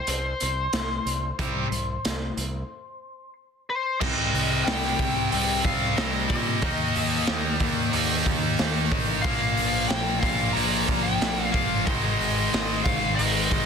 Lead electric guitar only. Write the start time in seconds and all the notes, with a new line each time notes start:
Already playing: C5
3.70 C5
4.00 D#5
4.64 G5
5.30 G5
5.65 F5
5.96 D#5
6.30 D#5
7.52 D5
9.22 F5
9.88 G5
10.20 F5
10.53 A#5
11.03 G5
11.52 F5
11.86 D#5
12.84 F5
13.15 D#5